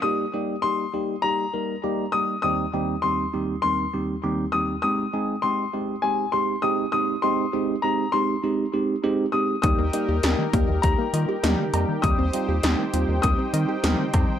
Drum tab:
HH |--------|--------|--------|--------|
CB |--------|--------|--------|--------|
SD |--------|--------|--------|--------|
T2 |--------|--------|--------|--------|
BD |--------|--------|--------|--------|

HH |xxxxxxxx|xxxxxxxx|
CB |-------x|-------x|
SD |--o---o-|--o---o-|
T2 |------o-|------o-|
BD |o--oo---|o---o--o|